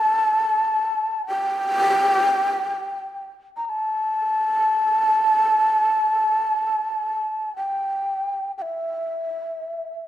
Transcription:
0.00 1.25 A5 loud
1.27 3.28 G5 loud
3.57 3.65 A#5 medium
3.65 7.56 A5 loud
3.65 3.70 A#5 loud
7.57 8.52 G5 medium
8.58 8.63 G5 medium
8.62 10.08 E5 medium

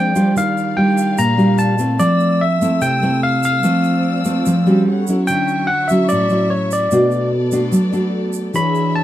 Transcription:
0.00 0.34 F3 medium
0.00 0.13 G#3 medium
0.00 0.34 A#3 medium
0.00 0.13 C4 medium
0.00 0.13 D4 medium
0.00 0.34 G#4 medium
0.00 0.34 C5 medium
0.00 1.94 D5 medium
0.00 0.34 G5 medium
0.15 0.73 G3 medium
0.15 0.73 D4 medium
0.15 0.74 F4 medium
0.15 shaker medium
0.35 1.16 D#3 medium
0.35 1.98 G4 medium
0.35 1.98 F5 medium
0.35 0.79 F5 medium
0.35 shaker medium
0.57 shaker soft
0.77 1.35 G3 medium
0.77 1.35 D4 medium
0.77 1.36 F4 medium
0.77 1.19 G5 medium
0.98 shaker medium
1.18 1.98 A#2 medium
1.18 1.56 A#5 loud
1.18 shaker medium
1.37 1.75 G3 medium
1.37 1.76 D4 medium
1.37 1.76 F4 medium
1.37 shaker soft
1.58 2.01 A5 loud
1.58 shaker medium
1.79 2.57 A3 medium
1.79 2.57 C4 medium
1.79 2.58 E4 medium
1.79 shaker medium
1.99 2.79 F3 medium
1.99 3.61 A3 medium
1.99 2.42 D5 loud
1.99 4.83 E6 medium
1.99 shaker medium
2.20 shaker soft
2.41 2.83 E5 medium
2.61 2.99 A3 medium
2.61 2.99 C4 medium
2.61 2.99 E4 medium
2.61 shaker medium
2.81 3.61 C3 medium
2.81 3.20 G5 loud
2.81 shaker medium
3.02 3.60 A3 medium
3.02 3.60 C4 medium
3.02 3.61 E4 medium
3.02 shaker soft
3.23 3.44 F5 loud
3.43 4.83 F5 medium
3.43 shaker medium
3.62 4.84 F3 medium
3.62 4.43 F3 medium
3.62 4.21 A3 medium
3.62 4.84 C4 medium
3.62 4.21 C4 medium
3.62 4.85 D5 medium
3.62 shaker medium
3.84 shaker soft
4.25 4.63 A3 medium
4.25 4.62 C4 medium
4.25 shaker medium
4.46 4.85 F3 medium
4.46 shaker medium
4.66 5.04 G3 medium
4.66 5.04 C#4 medium
4.66 5.04 F#4 medium
4.66 shaker soft
4.87 5.27 B3 medium
4.87 5.27 A4 medium
4.87 5.27 C#5 medium
4.87 5.27 F#5 medium
5.07 5.67 F#3 medium
5.07 5.67 C#4 medium
5.07 5.68 E4 medium
5.07 shaker medium
5.27 6.08 D3 medium
5.27 6.89 F#3 medium
5.27 6.89 E5 medium
5.27 5.69 G5 loud
5.27 6.89 C#6 medium
5.27 shaker medium
5.48 shaker soft
5.67 5.89 F#5 medium
5.88 6.27 F#3 medium
5.88 6.27 C#4 soft
5.88 6.09 E5 medium
5.88 shaker medium
5.92 6.28 E4 medium
6.09 6.90 A2 medium
6.09 6.51 D5 medium
6.09 shaker medium
6.29 6.88 F#3 medium
6.29 6.88 C#4 medium
6.29 6.88 E4 medium
6.29 shaker soft
6.50 6.71 C#5 medium
6.71 7.29 D5 medium
6.71 shaker medium
6.91 7.71 B2 medium
6.91 7.32 A3 medium
6.91 8.54 B3 medium
6.91 7.32 D4 medium
6.91 7.32 F#4 medium
6.91 8.54 A4 medium
6.91 8.54 D5 medium
6.91 shaker medium
7.11 shaker soft
7.52 7.90 A3 medium
7.52 7.90 D4 medium
7.52 7.90 F#4 medium
7.52 shaker medium
7.72 8.52 F#3 medium
7.72 shaker medium
7.92 8.51 A3 medium
7.92 8.51 D4 medium
7.92 8.51 F#4 medium
7.92 shaker soft
8.33 shaker medium
8.54 9.04 E3 medium
8.54 9.04 D4 medium
8.54 9.04 F#4 medium
8.54 9.04 G#4 medium
8.54 9.04 C#5 medium
8.54 9.04 E5 medium
8.54 8.93 B5 loud
8.54 shaker medium
8.75 shaker soft
8.96 9.04 A5 medium

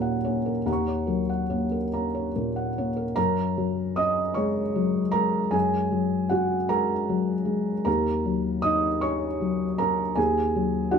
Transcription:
0.00 0.63 D#2 medium
0.00 0.49 A#2 soft
0.00 0.70 F#3 soft
0.00 0.24 A#3 medium
0.00 0.24 C#4 medium
0.00 0.46 A#4 medium
0.00 0.25 C#5 medium
0.00 0.66 F#5 medium
0.00 0.66 A#5 medium
0.24 0.63 A#3 soft
0.24 0.63 C#4 soft
0.24 0.58 C#5 soft
0.46 0.79 A#4 soft
0.66 3.12 D#2 soft
0.66 1.28 F#5 soft
0.66 0.68 A#5 soft
0.66 1.92 A#5 soft
0.73 3.16 C#6 soft
0.87 1.21 C#5 soft
1.07 1.75 F#3 soft
1.07 1.41 A#4 soft
1.29 1.63 F#5 soft
1.50 1.88 A#3 soft
1.50 1.88 C#4 soft
1.50 1.84 C#5 soft
1.72 2.05 A#4 soft
1.93 2.30 A#3 soft
1.93 2.31 C#4 soft
1.93 2.26 A#5 soft
2.15 2.47 C#5 soft
2.36 3.02 A#2 soft
2.36 2.68 A#4 soft
2.56 2.89 F#5 soft
2.78 3.14 A#3 soft
2.78 3.14 C#4 soft
2.78 3.10 C#5 soft
2.96 3.15 A#4 soft
3.16 5.49 F#2 medium
3.16 3.93 A#4 medium
3.16 3.96 A#5 medium
3.57 4.21 F#3 medium
3.96 4.60 C#4 soft
3.96 4.34 D#5 medium
3.96 4.36 D#6 medium
4.34 4.99 G#3 medium
4.34 5.10 C#5 medium
4.34 5.14 C#6 medium
4.75 5.38 F#3 soft
5.12 5.76 G#3 medium
5.12 5.50 A#4 medium
5.12 5.52 A#5 medium
5.51 7.82 F#2 medium
5.51 6.26 G#4 medium
5.51 6.29 G#5 medium
5.92 6.54 F#3 soft
6.29 6.93 C#4 soft
6.29 6.67 F#4 medium
6.29 6.69 F#5 medium
6.69 7.32 G#3 soft
6.69 7.83 A#4 medium
6.69 7.83 A#5 medium
7.09 7.71 F#3 soft
7.45 7.85 G#3 soft
7.85 10.12 D#2 medium
7.85 8.59 A#4 medium
7.85 8.62 A#5 medium
8.25 8.86 F#3 soft
8.62 9.25 D#4 soft
8.62 8.99 D#5 medium
8.62 9.01 D#6 medium
9.01 9.64 C#4 soft
9.01 9.75 C#5 medium
9.01 9.79 C#6 medium
9.41 10.02 F#3 soft
9.78 10.39 C#4 medium
9.78 10.14 A#4 medium
9.78 10.16 A#5 medium
10.16 10.99 D#2 medium
10.16 10.87 G#4 medium
10.16 10.91 G#5 medium
10.56 10.99 F#3 soft
10.91 10.99 D#4 soft
10.91 10.99 F#4 medium
10.91 10.99 F#5 medium

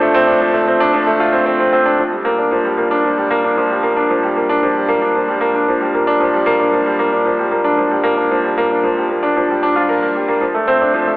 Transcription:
0.00 0.41 F3 medium
0.00 0.54 A3 medium
0.00 0.14 C4 loud
0.00 0.27 D4 loud
0.14 0.22 C4 loud
0.27 0.40 D4 medium
0.41 0.54 F3 medium
0.54 0.67 A3 medium
0.68 0.75 C4 medium
0.80 0.93 D4 medium
0.94 1.06 F3 medium
1.07 1.19 A3 medium
1.20 1.28 F4 medium
1.33 1.45 C4 medium
1.46 1.54 C4 medium
1.60 1.71 C4 medium
1.73 1.85 C4 medium
1.86 1.93 D4 medium
1.99 2.12 F3 medium
2.12 2.25 G3 medium
2.25 2.33 A#3 medium
2.38 2.51 D4 medium
2.51 2.64 F3 medium
2.65 2.77 G3 medium
2.78 2.85 A#3 medium
2.91 3.04 D4 medium
3.04 3.17 F3 medium
3.18 3.30 G3 medium
3.31 3.43 A#3 medium
3.44 3.57 D4 medium
3.57 3.70 F3 medium
3.70 3.83 G3 medium
3.83 3.91 A#3 medium
3.96 4.09 D4 medium
4.10 4.22 F3 medium
4.23 4.35 G3 medium
4.36 4.44 A#3 medium
4.49 4.62 D4 medium
4.63 4.75 F3 medium
4.76 4.88 G3 medium
4.88 5.01 A#3 medium
5.02 5.14 D4 medium
5.15 5.28 F3 medium
5.28 5.41 G3 medium
5.41 5.48 A#3 medium
5.54 5.67 D4 medium
5.68 5.80 F3 medium
5.81 5.93 G3 medium
5.94 6.02 A#3 medium
6.07 6.20 D4 medium
6.20 6.33 F3 medium
6.34 6.46 G3 medium
6.46 6.59 A#3 medium
6.60 6.72 D4 medium
6.73 6.85 F3 medium
6.86 6.99 G3 medium
6.99 7.07 A#3 medium
7.12 7.25 D4 medium
7.25 7.38 F3 medium
7.39 7.51 G3 medium
7.51 7.59 A#3 medium
7.64 7.77 D4 medium
7.78 7.90 F3 medium
7.91 8.04 G3 medium
8.04 8.16 A#3 medium
8.17 8.30 D4 medium
8.31 8.43 F3 medium
8.44 8.57 G3 medium
8.58 8.65 A#3 medium
8.71 8.83 D4 medium
8.84 8.96 F3 medium
8.97 9.09 G3 medium
9.10 9.17 A#3 medium
9.23 9.35 D4 medium
9.36 9.49 F3 medium
9.50 9.62 G3 medium
9.63 9.75 D4 medium
9.76 9.88 F4 medium
9.89 10.01 A#4 medium
10.02 10.15 A#3 medium
10.15 10.28 G3 medium
10.28 10.41 A#3 medium
10.41 10.54 F3 medium
10.54 10.67 A3 medium
10.68 10.75 C4 medium
10.81 10.93 D4 medium
10.94 11.06 F3 medium
11.07 11.17 A3 medium

